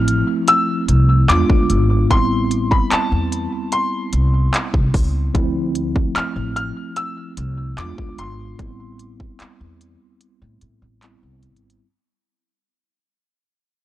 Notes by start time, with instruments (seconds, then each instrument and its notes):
Already playing: upright bass A1, tine electric piano F3 A3 C4 E4, grand piano F6
0.08 closed hi-hat
0.48 grand piano E6, closed hi-hat
0.89 upright bass C2, closed hi-hat
1.29 upright bass E2, tine electric piano G3 B3 D4 F4, grand piano D6, clap, closed hi-hat
1.36 tine electric piano G#3
1.50 upright bass D2, kick
1.70 upright bass G#1, closed hi-hat
2.10 upright bass A1, tine electric piano G3 B3 C4 E4, grand piano C6, kick, closed hi-hat
2.51 closed hi-hat
2.71 grand piano B5, kick
2.91 grand piano A5, muted upright bass stroke, clap, closed hi-hat
3.12 upright bass E2
3.32 closed hi-hat
3.72 grand piano C6, closed hi-hat
4.13 upright bass C2, closed hi-hat
4.54 clap, closed hi-hat
4.74 upright bass C2, kick
4.94 upright bass C#2, kick, open hi-hat
5.34 upright bass D2, tine electric piano F3 A3 C4 E4, kick, closed hi-hat
5.75 closed hi-hat
5.96 kick
6.16 grand piano F6, muted upright bass stroke, clap, closed hi-hat
6.36 upright bass A1
6.56 grand piano F6, closed hi-hat
6.96 grand piano E6, closed hi-hat
7.37 upright bass C2, closed hi-hat
7.78 upright bass E2, tine electric piano F3 B3 D4 F4, grand piano D6, clap, closed hi-hat
7.85 tine electric piano G#3
7.98 upright bass D2, kick
8.18 upright bass G#1, grand piano C6, closed hi-hat
8.58 upright bass A1, tine electric piano G3 B3 C4 E4, kick, closed hi-hat
8.99 closed hi-hat
9.20 kick
9.40 muted upright bass stroke, clap, closed hi-hat
9.61 upright bass E2
9.81 closed hi-hat
10.21 closed hi-hat
10.42 upright bass A2
10.61 upright bass A2, closed hi-hat
10.82 upright bass A1
11.02 tine electric piano G3 B3 C4 E4, clap, closed hi-hat
11.23 upright bass C2
11.43 upright bass G#1, closed hi-hat, open hi-hat
11.56 closed hi-hat
11.70 closed hi-hat